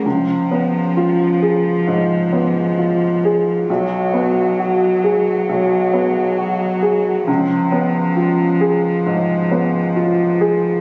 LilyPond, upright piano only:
\new Staff \with { instrumentName = "Upright piano" } { \time 4/4 \key cis \mixolydian \tempo 4 = 67 cis,8 b8 eis'8 gis'8 gis,8 b8 eis'8 gis'8 | b,,8 b8 fis'8 gis'8 b,,8 b8 fis'8 gis'8 | cis,8 b8 eis'8 gis'8 gis,8 b8 eis'8 gis'8 | }